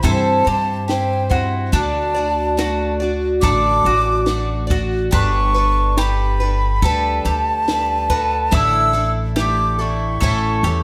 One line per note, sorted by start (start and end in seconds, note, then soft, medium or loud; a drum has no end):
0.03 0.44 G2 loud
0.03 0.46 C3 medium
0.03 0.46 E3 medium
0.03 0.46 G3 medium
0.03 0.46 C4 loud
0.03 0.44 E4 medium
0.03 0.46 A4 medium
0.03 0.43 C5 medium
0.03 0.88 A5 loud
0.03 kick medium
0.45 1.69 G2 medium
0.45 0.87 G3 soft
0.45 0.88 C4 medium
0.45 0.88 E4 soft
0.45 1.30 G4 medium
0.45 0.88 C5 medium
0.88 1.31 G3 medium
0.88 1.30 C4 medium
0.88 1.29 E4 medium
0.88 1.28 C5 medium
0.88 1.33 G5 loud
0.88 snare medium
1.30 1.73 G3 soft
1.30 1.73 C4 medium
1.30 1.73 E4 medium
1.30 1.73 F#4 medium
1.30 1.73 C5 medium
1.30 1.73 F#5 medium
1.30 kick medium
1.72 3.38 D2 loud
1.72 2.15 D3 medium
1.72 2.15 A3 medium
1.72 2.56 D4 medium
1.72 2.16 D4 medium
1.72 2.15 F#4 medium
1.72 2.13 D5 medium
1.72 2.97 A5 loud
1.72 kick medium
2.15 2.57 D4 soft
2.15 2.58 F#4 medium
2.15 2.57 D5 medium
2.57 3.00 A3 medium
2.57 3.00 D4 medium
2.57 3.41 F#4 medium
2.57 3.01 F#4 medium
2.57 2.99 D5 medium
2.57 snare medium
3.00 3.41 D4 medium
3.00 3.42 F#4 medium
3.00 3.42 D5 medium
3.41 3.83 A1 loud
3.41 3.84 D3 medium
3.41 3.84 A3 medium
3.41 3.85 D4 loud
3.41 3.85 F#4 loud
3.41 3.84 A4 medium
3.41 3.84 D5 medium
3.41 4.65 D6 loud
3.41 kick medium
3.85 5.08 A1 loud
3.85 4.26 D4 soft
3.85 4.69 F#4 medium
3.85 4.27 F#4 medium
3.85 4.27 D5 medium
4.26 4.69 A3 medium
4.26 4.70 D4 medium
4.26 4.69 F#4 medium
4.26 4.66 D5 medium
4.26 snare medium
4.67 5.12 F#4 medium
4.67 5.11 D5 medium
4.67 kick medium
4.71 5.11 D4 medium
5.11 6.78 G1 loud
5.11 5.54 G3 medium
5.11 5.55 D4 medium
5.11 5.95 D4 medium
5.11 5.55 A4 medium
5.11 5.53 B4 medium
5.11 6.00 C#6 loud
5.11 kick loud
5.55 5.98 D4 soft
5.55 5.97 A4 medium
5.55 5.97 B4 medium
5.97 6.40 G3 medium
5.97 6.40 D4 medium
5.97 6.80 G4 medium
5.97 6.40 A4 medium
5.97 6.87 B5 medium
5.97 snare medium
6.01 6.39 B4 medium
6.40 6.83 D4 soft
6.40 6.83 A4 medium
6.40 6.82 B4 medium
6.82 7.22 D2 medium
6.82 7.24 G3 medium
6.82 7.25 D4 medium
6.82 7.23 A4 medium
6.82 7.26 A4 medium
6.82 7.24 B4 medium
6.82 8.56 A5 loud
6.82 kick medium
7.25 8.47 D2 medium
7.25 7.68 D4 soft
7.25 8.08 G4 medium
7.25 7.68 A4 soft
7.25 7.67 B4 medium
7.68 8.09 G3 medium
7.68 8.10 D4 medium
7.68 8.10 A4 medium
7.68 8.09 B4 medium
7.68 snare loud
8.10 8.51 D4 medium
8.10 8.51 F#4 medium
8.10 8.52 A4 medium
8.10 8.52 B4 medium
8.10 kick medium
8.51 10.17 A1 loud
8.51 8.93 A2 medium
8.51 8.94 D3 medium
8.51 8.94 A3 medium
8.51 8.94 D4 medium
8.51 9.35 E4 medium
8.51 8.93 E4 medium
8.51 8.92 A4 medium
8.51 9.10 E6 loud
8.51 kick loud
8.93 9.36 A3 soft
8.93 9.36 D4 medium
8.93 9.36 E4 medium
8.93 9.36 A4 medium
9.36 9.79 A3 medium
9.36 9.79 D4 medium
9.36 9.78 E4 medium
9.36 10.19 G4 medium
9.36 9.83 D6 loud
9.36 snare loud
9.40 9.78 A4 medium
9.79 10.21 A3 soft
9.79 10.22 D4 soft
9.79 10.21 E4 medium
9.79 10.21 A4 medium
9.79 10.83 C#6 medium
10.21 10.62 A1 medium
10.21 10.63 A2 medium
10.21 10.63 E3 medium
10.21 10.64 A3 medium
10.21 10.64 C#4 medium
10.21 10.64 E4 loud
10.21 10.62 A4 medium
10.21 10.63 A4 medium
10.21 kick medium
10.63 10.83 E2 loud
10.63 10.83 C#4 soft
10.63 10.83 E4 medium
10.63 10.83 G4 medium
10.63 10.83 A4 medium
10.67 10.83 A3 soft